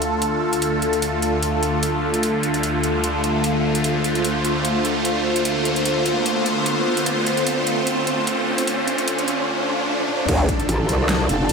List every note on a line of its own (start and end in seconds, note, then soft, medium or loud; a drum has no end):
0.00 10.25 D2 medium
0.00 10.25 D3 medium
0.00 10.24 A3 medium
0.00 10.24 F4 medium
0.00 3.82 A4 medium
0.00 closed hi-hat medium
0.00 riser medium
0.22 closed hi-hat medium
0.53 closed hi-hat medium
0.62 closed hi-hat medium
0.82 closed hi-hat soft
0.93 closed hi-hat soft
1.02 closed hi-hat medium
1.22 closed hi-hat soft
1.43 closed hi-hat medium
1.63 closed hi-hat medium
1.83 closed hi-hat medium
2.14 closed hi-hat medium
2.23 closed hi-hat medium
2.43 closed hi-hat soft
2.54 closed hi-hat soft
2.63 closed hi-hat medium
2.83 closed hi-hat soft
3.04 closed hi-hat medium
3.24 closed hi-hat soft
3.44 closed hi-hat medium
3.75 closed hi-hat medium
3.84 10.27 C5 medium
3.84 closed hi-hat medium
4.04 closed hi-hat soft
4.15 closed hi-hat soft
4.25 closed hi-hat medium
4.45 closed hi-hat medium
4.65 closed hi-hat medium
4.85 closed hi-hat soft
5.05 closed hi-hat medium
5.36 closed hi-hat medium
5.45 closed hi-hat medium
5.65 closed hi-hat medium
5.76 closed hi-hat soft
5.85 closed hi-hat medium
6.06 closed hi-hat medium
6.26 closed hi-hat medium
6.46 closed hi-hat medium
6.66 closed hi-hat medium
6.97 closed hi-hat medium
7.06 closed hi-hat medium
7.26 closed hi-hat medium
7.37 closed hi-hat soft
7.47 closed hi-hat medium
7.67 closed hi-hat medium
7.87 closed hi-hat medium
8.07 closed hi-hat medium
8.27 closed hi-hat medium
8.58 closed hi-hat medium
8.67 closed hi-hat medium
8.88 closed hi-hat medium
8.98 closed hi-hat soft
9.08 closed hi-hat medium
9.18 closed hi-hat soft
9.28 closed hi-hat medium
9.99 high tom medium
10.08 mid tom medium
10.19 mid tom medium
10.29 10.47 D2 loud
10.29 11.53 D3 medium
10.29 11.53 D4 medium
10.29 11.53 F4 medium
10.29 11.53 A4 medium
10.29 11.53 A5 loud
10.29 kick loud
10.29 closed hi-hat medium
10.29 crash loud
10.29 impact medium
10.49 kick medium
10.49 closed hi-hat medium
10.60 closed hi-hat soft
10.69 10.87 A1 medium
10.69 closed hi-hat medium
10.89 11.28 C2 medium
10.89 closed hi-hat medium
11.09 snare loud
11.09 clap loud
11.09 closed hi-hat medium
11.29 11.48 F1 medium
11.29 closed hi-hat medium
11.49 11.53 F1 medium
11.49 closed hi-hat medium